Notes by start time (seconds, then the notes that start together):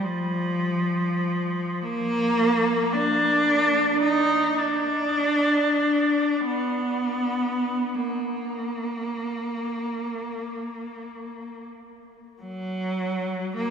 0.04 F3
1.82 A#3
2.93 D4
4.03 D#4
4.59 D4
6.46 B3
7.95 A#3
12.42 F#3
13.57 A#3